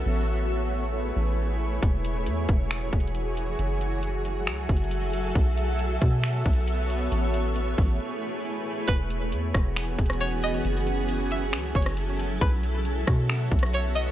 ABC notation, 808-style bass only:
X:1
M:4/4
L:1/8
Q:1/4=136
K:E
V:1 name="808-style bass" clef=bass
A,,,4- A,,, A,,,3 | E,,,2 E,, E,,,2 E,,,3 | F,,,4 C,, F,,,3 | B,,,3 B,,2 B,,,3 |
A,,,3 A,,, z4 | E,,,2 E,, E,,,2 E,,,3 | F,,,4 C,, F,,,3 | B,,,3 B,,2 B,,,3 |]